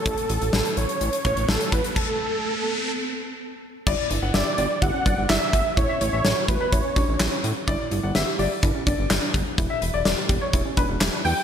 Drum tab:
CC |----------------|x---------------|x---------------|----------------|
HH |xxxx-xxxxxxx-xxx|----------------|--x-x-x-x-x-x-x-|x-x-x-x-x-x-x-x-|
CP |----------------|----------------|------------x---|------------x---|
SD |----o-------o---|----------------|----o-------o---|----o-------o---|
BD |o---------o---o-|o---------------|o-------o-o---o-|o-----o-o-o-----|

CC |----------------|----------------|
HH |x-x-x-o-x-x-x-x-|x-x-x-x-x-x-x-o-|
CP |------------x---|------------x---|
SD |----o-------o---|----o-------o---|
BD |o-------o-o---o-|o-----o-o-o-----|